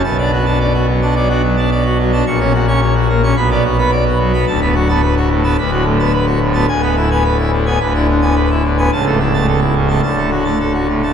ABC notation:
X:1
M:4/4
L:1/16
Q:1/4=108
K:Bdor
V:1 name="Pipe organ"
[B,,a] [Dd] F [Da] d F F, [Da] [F,d] [DF] F, [Da] d F F, [Da] | [^A,,c'] [Cc] F [Cc'] c F ^A, [Cc'] [B,,b] [B,d] F [B,b] d F F, [B,b] | [K:Emix] [D,,a] [B,B] F [B,a] B F A,, [B,a] [D,,B] [A,,F] A,, [B,a] B F A,, [B,a] | [D,,g] [B,B] E [B,g] B E D, [B,g] [D,,B] [D,E] D, [B,g] B E D, [B,g] |
[C,,a] [A,A] E [A,a] A E C, [A,a] [D,,a] [A,A] F [A,a] A F A,, [A,a] |]
V:2 name="Pipe organ" clef=bass
B,,,16 | ^A,,,8 B,,,8 | [K:Emix] D,,,8 D,,,8 | D,,,8 D,,,8 |
C,,,8 D,,,8 |]